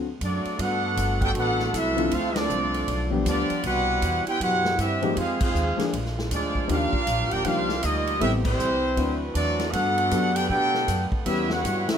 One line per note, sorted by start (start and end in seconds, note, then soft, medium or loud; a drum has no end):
0.00 0.20 D2 medium
0.21 0.44 F#2 medium
0.21 0.57 F#3 medium
0.21 0.57 A3 medium
0.21 0.58 C4 medium
0.21 0.57 D4 medium
0.21 0.58 F#4 medium
0.21 0.58 A4 medium
0.21 0.58 D5 medium
0.21 kick soft
0.21 hi-hat pedal soft
0.21 ride medium
0.45 muted upright bass stroke soft
0.45 ride soft
0.58 0.96 G2 medium
0.58 2.85 A3 medium
0.58 1.20 B3 medium
0.58 2.10 B3 medium
0.58 1.20 D4 medium
0.58 1.23 D4 loud
0.58 1.21 F#4 medium
0.58 2.10 F#4 medium
0.58 2.10 A4 medium
0.58 1.23 A4 medium
0.58 1.23 B4 loud
0.58 1.22 F#5 loud
0.58 kick soft
0.58 ride medium
0.97 1.34 G1 loud
0.97 kick soft
0.97 hi-hat pedal medium
0.97 ride medium
1.21 1.28 B3 medium
1.21 1.28 D4 medium
1.21 1.30 D4 medium
1.21 1.28 G4 medium
1.21 1.30 A4 loud
1.21 1.30 B4 medium
1.21 kick medium
1.21 ride medium
1.25 1.31 G5 loud
1.34 1.72 A1 medium
1.34 1.70 B3 medium
1.34 1.70 D4 medium
1.34 1.70 F#4 loud
1.34 kick soft
1.34 ride medium
1.39 1.73 D4 medium
1.39 1.73 A4 loud
1.39 1.73 B4 medium
1.39 1.73 F#5 loud
1.59 snare soft
1.73 2.11 C2 loud
1.73 2.12 F#3 medium
1.73 2.12 B3 medium
1.73 2.13 D4 medium
1.73 2.12 E4 medium
1.73 2.13 A4 medium
1.73 2.13 B4 medium
1.73 2.13 E5 loud
1.73 kick soft
1.73 hi-hat pedal medium
1.73 ride medium
1.96 2.10 D3 medium
1.96 2.10 F3 medium
1.96 2.10 A3 medium
1.96 2.11 C4 medium
1.96 2.10 F4 medium
1.96 ride medium
2.11 2.49 D2 medium
2.11 3.63 D3 medium
2.11 2.34 A3 medium
2.11 2.36 C4 medium
2.11 2.87 C4 medium
2.11 2.37 D4 medium
2.11 2.36 F4 medium
2.11 2.87 F4 medium
2.11 2.38 A4 medium
2.11 2.37 C5 loud
2.11 2.37 F5 loud
2.11 kick soft
2.11 ride medium
2.35 3.12 F3 medium
2.35 3.12 A3 medium
2.35 2.89 C4 medium
2.35 3.12 D4 medium
2.35 3.13 F4 loud
2.35 3.14 A4 medium
2.35 3.13 D5 loud
2.35 snare medium
2.35 ride medium
2.49 2.87 C2 loud
2.49 hi-hat pedal medium
2.74 ride medium
2.88 3.25 B1 medium
2.88 5.14 D4 medium
2.88 3.64 F4 medium
2.88 kick soft
2.88 ride medium
3.11 3.61 F3 medium
3.11 3.61 G3 medium
3.11 3.61 B3 medium
3.11 3.61 D4 medium
3.11 3.61 G4 medium
3.25 3.48 D2 loud
3.25 3.62 F3 medium
3.25 3.61 B3 medium
3.25 3.63 B3 medium
3.25 3.62 D4 medium
3.25 3.63 F4 medium
3.25 3.63 G4 medium
3.25 3.63 D5 loud
3.25 kick soft
3.25 hi-hat pedal medium
3.25 ride medium
3.50 muted upright bass stroke soft
3.50 ride medium
3.63 4.01 C2 medium
3.63 4.23 B2 loud
3.63 5.15 E3 medium
3.63 4.23 G3 loud
3.63 5.15 E4 medium
3.63 4.24 E4 medium
3.63 4.23 F#4 medium
3.63 4.24 B4 loud
3.63 4.24 C5 medium
3.63 4.23 F#5 loud
3.63 kick soft
3.63 ride medium
4.02 4.25 E2 loud
4.02 kick soft
4.02 hi-hat pedal medium
4.02 ride medium
4.26 4.41 B3 medium
4.26 4.40 E4 medium
4.26 4.41 E4 loud
4.26 4.40 G4 medium
4.26 4.41 B4 medium
4.26 4.41 C5 medium
4.26 4.42 G5 loud
4.26 muted upright bass stroke soft
4.26 ride medium
4.40 4.77 F#2 medium
4.40 4.76 B2 medium
4.40 4.77 E4 medium
4.40 4.76 F#4 medium
4.40 4.76 G4 medium
4.40 4.77 B4 medium
4.40 4.77 C5 medium
4.40 4.77 F#5 loud
4.40 kick soft
4.40 ride medium
4.65 snare medium
4.78 5.15 G2 loud
4.78 5.14 G3 medium
4.78 5.14 C4 medium
4.78 5.15 C4 medium
4.78 5.14 E4 medium
4.78 5.15 G4 medium
4.78 5.15 B4 medium
4.78 5.15 E5 loud
4.78 kick soft
4.78 hi-hat pedal medium
4.78 ride medium
5.02 5.15 F3 medium
5.02 5.15 G#3 medium
5.02 5.15 A#3 medium
5.02 5.15 D#4 medium
5.02 5.16 G4 medium
5.02 ride medium
5.16 5.53 F2 medium
5.16 5.92 D#3 medium
5.16 6.68 G#3 medium
5.16 5.39 G#3 medium
5.16 6.68 A#3 medium
5.16 5.40 C4 medium
5.16 5.39 F4 medium
5.16 5.92 G#4 medium
5.16 5.41 G#4 medium
5.16 5.41 C5 medium
5.16 5.41 F5 medium
5.16 kick soft
5.16 ride medium
5.20 5.41 D#4 medium
5.41 5.84 G#3 medium
5.41 5.84 C4 medium
5.41 5.86 D#4 medium
5.41 5.84 F4 medium
5.41 5.86 C5 medium
5.41 kick loud
5.41 crash medium
5.45 5.86 G#4 medium
5.45 5.86 F5 medium
5.55 5.77 D#2 loud
5.55 hi-hat pedal medium
5.77 5.91 F3 medium
5.77 5.91 G#3 medium
5.77 5.91 A#3 medium
5.77 5.91 D4 medium
5.77 5.92 G#4 medium
5.77 muted upright bass stroke soft
5.77 snare medium
5.77 ride medium
5.93 6.30 A#1 medium
5.93 6.68 D3 medium
5.93 8.19 F4 medium
5.93 kick soft
5.93 ride medium
6.05 snare soft
6.19 snare medium
6.31 6.68 D2 medium
6.31 6.67 F3 medium
6.31 6.66 G#3 medium
6.31 6.68 A#3 medium
6.31 6.66 D4 medium
6.31 6.68 F4 medium
6.31 6.67 G#4 medium
6.31 6.68 D5 loud
6.31 kick soft
6.31 hi-hat pedal medium
6.31 ride medium
6.55 kick medium
6.68 6.92 D#2 medium
6.68 6.90 F3 medium
6.68 8.20 F3 medium
6.68 8.20 G3 medium
6.68 7.29 A#3 medium
6.68 6.90 A#3 medium
6.68 8.20 A#3 medium
6.68 7.29 D4 medium
6.68 6.91 D4 medium
6.68 6.91 D#4 medium
6.68 7.31 F4 medium
6.68 6.91 G4 medium
6.68 kick soft
6.68 ride medium
6.72 7.33 D4 loud
6.72 7.33 G4 loud
6.72 7.32 A#4 medium
6.72 7.33 F5 loud
6.93 muted upright bass stroke soft
6.93 kick medium
7.07 7.21 A#1 loud
7.07 kick soft
7.07 hi-hat pedal medium
7.07 ride medium
7.20 7.32 G1 medium
7.30 7.44 D#1 medium
7.30 7.43 A#3 medium
7.30 7.42 D4 medium
7.30 7.46 F4 loud
7.30 7.45 G4 medium
7.30 7.43 A#4 loud
7.30 7.46 D5 loud
7.30 7.46 G5 loud
7.30 ride medium
7.43 7.82 C2 medium
7.43 7.67 F3 medium
7.43 7.81 A#3 medium
7.43 7.67 A#3 medium
7.43 7.82 D4 loud
7.43 7.83 D4 loud
7.43 7.67 D4 medium
7.43 7.67 D#4 medium
7.43 7.83 F4 loud
7.43 7.82 G4 loud
7.43 7.67 G4 medium
7.43 7.83 A#4 loud
7.43 7.84 F5 loud
7.43 kick soft
7.43 ride medium
7.69 snare medium
7.82 8.20 D2 loud
7.82 8.19 G3 medium
7.82 8.21 A#3 medium
7.82 8.22 D#4 medium
7.82 8.22 F4 medium
7.82 8.21 G4 medium
7.82 8.21 D#5 loud
7.82 kick soft
7.82 hi-hat pedal medium
7.82 ride medium
8.07 ride medium
8.19 8.58 A1 medium
8.19 8.79 C3 medium
8.19 8.42 G3 medium
8.19 8.31 G3 medium
8.19 8.79 A3 medium
8.19 8.43 B3 medium
8.19 8.31 C4 medium
8.19 8.79 C4 medium
8.19 8.43 C4 medium
8.19 8.32 C4 medium
8.19 8.31 E4 medium
8.19 8.43 E4 medium
8.19 8.79 G4 medium
8.19 8.33 G4 medium
8.19 8.43 A4 medium
8.19 8.32 B4 medium
8.19 8.32 E5 loud
8.19 kick soft
8.19 ride medium
8.44 9.17 E3 medium
8.44 8.93 G3 medium
8.44 8.95 G3 medium
8.44 9.17 C4 medium
8.44 9.18 E4 medium
8.44 9.18 B4 medium
8.44 9.18 C5 loud
8.44 kick loud
8.44 crash medium
8.59 8.96 C2 medium
8.59 hi-hat pedal medium
8.96 9.34 D2 medium
8.96 9.73 E3 medium
8.96 9.19 F#3 medium
8.96 9.73 C4 medium
8.96 9.19 C4 medium
8.96 9.19 D4 medium
8.96 9.19 E4 medium
8.96 9.72 F#4 medium
8.96 9.73 B4 medium
8.96 9.19 B4 medium
8.96 kick soft
8.96 ride medium
9.33 9.72 E2 medium
9.33 9.70 F#3 medium
9.33 9.70 A3 medium
9.33 9.71 C4 medium
9.33 9.70 D4 medium
9.33 9.71 F#4 medium
9.33 9.70 A4 medium
9.33 9.71 D5 loud
9.33 kick soft
9.33 hi-hat pedal medium
9.33 ride medium
9.59 snare medium
9.59 ride medium
9.71 10.11 G2 medium
9.71 11.24 D3 medium
9.71 11.24 A3 medium
9.71 10.34 B3 medium
9.71 11.98 B3 medium
9.71 10.33 D4 medium
9.71 10.34 D4 loud
9.71 10.35 F#4 medium
9.71 10.33 A4 medium
9.71 11.24 A4 medium
9.71 10.34 B4 medium
9.71 10.35 F#5 loud
9.71 kick soft
9.71 ride medium
9.98 ride medium
10.11 10.48 F#2 loud
10.11 10.69 B3 medium
10.11 10.69 D4 medium
10.11 10.70 F#4 medium
10.11 10.69 G4 medium
10.11 10.70 A4 medium
10.11 kick soft
10.11 hi-hat pedal medium
10.11 ride medium
10.34 10.48 B3 medium
10.34 10.49 D4 medium
10.34 10.47 D4 medium
10.34 10.48 G4 medium
10.34 10.48 A4 medium
10.34 10.48 B4 medium
10.34 10.48 G5 loud
10.34 ride medium
10.49 10.87 B2 medium
10.49 11.08 B3 loud
10.49 11.08 D4 medium
10.49 11.08 G4 medium
10.49 11.08 A4 loud
10.49 11.08 B4 medium
10.49 11.08 G5 loud
10.49 kick soft
10.74 snare soft
10.88 11.10 F#2 medium
10.88 kick soft
10.88 hi-hat pedal medium
10.88 ride medium
11.12 muted upright bass stroke soft
11.12 kick medium
11.26 11.63 E2 medium
11.26 11.98 C#3 medium
11.26 11.48 G3 medium
11.26 11.98 G3 medium
11.26 11.49 G3 medium
11.26 11.48 B3 medium
11.26 11.48 C#4 medium
11.26 11.49 C#4 medium
11.26 11.48 E4 medium
11.26 11.98 E4 medium
11.26 11.48 E4 medium
11.26 11.49 G4 medium
11.26 11.48 B4 medium
11.26 11.49 E5 loud
11.26 kick soft
11.26 ride medium
11.50 11.88 G3 medium
11.50 11.88 B3 medium
11.50 11.89 E4 medium
11.50 11.88 F#4 medium
11.50 11.89 B4 medium
11.50 11.89 C#5 medium
11.50 11.90 F#5 loud
11.50 snare medium
11.64 11.87 G2 loud
11.64 kick soft
11.64 hi-hat pedal medium
11.64 ride medium
11.88 11.98 A#3 medium
11.88 11.98 C#4 medium
11.88 11.98 E4 medium
11.88 11.98 F#4 medium
11.88 11.98 A#4 medium
11.88 11.98 E5 loud
11.88 muted upright bass stroke soft
11.88 snare loud
11.88 ride medium